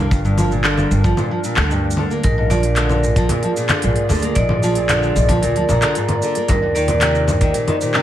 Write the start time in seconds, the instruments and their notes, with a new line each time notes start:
Already playing: ambient pad G3 D4 A#4 F5
0.00 steel-string acoustic guitar A#3
0.11 upright bass G1, steel-string acoustic guitar G2, kick, shaker
0.25 steel-string acoustic guitar G2, shaker
0.38 steel-string acoustic guitar F3, low conga, shaker
0.52 steel-string acoustic guitar A#2, shaker
0.64 steel-string acoustic guitar D3, clap, shaker
0.77 low conga, shaker
0.91 upright bass G1, steel-string acoustic guitar G2, shaker
1.04 steel-string acoustic guitar F3, kick, shaker
1.17 steel-string acoustic guitar A#2, low conga, shaker
1.31 steel-string acoustic guitar F3
1.44 steel-string acoustic guitar A#2, shaker
1.57 upright bass D2, steel-string acoustic guitar D3, clap, low conga, shaker
1.71 steel-string acoustic guitar G2, shaker
1.91 shaker
1.97 steel-string acoustic guitar D3, low conga
2.11 steel-string acoustic guitar A#3, shaker
2.23 upright bass A#1, steel-string acoustic guitar G#2, ambient pad A#3, vibraphone A#4, kick, open hi-hat, shaker
2.38 steel-string acoustic guitar G#2, ambient pad F4
2.50 steel-string acoustic guitar F3, vibraphone D5, low conga, shaker
2.63 steel-string acoustic guitar A#2, open hi-hat, shaker
2.71 ambient pad D5
2.76 steel-string acoustic guitar D3, clap, open hi-hat, shaker
2.89 ambient pad G#4, low conga, shaker
3.03 steel-string acoustic guitar G#2, vibraphone A#4, shaker
3.16 steel-string acoustic guitar F3, kick, open hi-hat, shaker
3.29 steel-string acoustic guitar A#2, open hi-hat, low conga, shaker
3.43 steel-string acoustic guitar F3, open hi-hat
3.57 steel-string acoustic guitar A#2, shaker
3.69 steel-string acoustic guitar D3, clap, open hi-hat, low conga, shaker
3.82 upright bass A#1, steel-string acoustic guitar G#2, open hi-hat, shaker
3.96 open hi-hat
4.09 upright bass D2, steel-string acoustic guitar D3, low conga, shaker
4.12 shaker
4.14 shaker
4.16 shaker
4.18 shaker
4.21 steel-string acoustic guitar A#3, open hi-hat, shaker
4.23 shaker
4.35 upright bass A#1, steel-string acoustic guitar G#2, vibraphone D5, kick, open hi-hat, shaker
4.49 steel-string acoustic guitar G#2, low conga
4.63 steel-string acoustic guitar F3, shaker
4.75 steel-string acoustic guitar A#2, open hi-hat, shaker
4.89 steel-string acoustic guitar D3, clap, open hi-hat, low conga, shaker
5.03 shaker
5.16 upright bass A#1, steel-string acoustic guitar G#2, shaker
5.29 steel-string acoustic guitar F3, kick, open hi-hat, low conga, shaker
5.42 upright bass D2, steel-string acoustic guitar A#2, vibraphone A#4, open hi-hat, shaker
5.56 steel-string acoustic guitar F3, open hi-hat
5.69 upright bass A#1, steel-string acoustic guitar A#2, vibraphone A#5, low conga, shaker
5.82 steel-string acoustic guitar D3, clap, open hi-hat, shaker
5.95 steel-string acoustic guitar G#2, open hi-hat, shaker
6.08 open hi-hat, low conga
6.22 steel-string acoustic guitar D3, shaker
6.35 steel-string acoustic guitar A#3, open hi-hat, shaker
6.48 upright bass D#2, steel-string acoustic guitar G2, ambient pad D#3, vibraphone A#4, kick, open hi-hat, low conga, shaker
6.62 steel-string acoustic guitar G2
6.75 steel-string acoustic guitar D#3, ambient pad D#4, vibraphone D5, shaker
6.86 steel-string acoustic guitar A#2, ambient pad C5, open hi-hat, low conga, shaker
7.01 steel-string acoustic guitar C3, clap, open hi-hat, shaker
7.11 ambient pad G4, shaker
7.28 steel-string acoustic guitar G2, vibraphone A#4, low conga, shaker
7.41 steel-string acoustic guitar D#3, kick, open hi-hat, shaker
7.54 steel-string acoustic guitar A#2, open hi-hat, shaker
7.68 steel-string acoustic guitar D#3, open hi-hat, low conga
7.81 steel-string acoustic guitar A#2, shaker
7.94 steel-string acoustic guitar C3, clap, shaker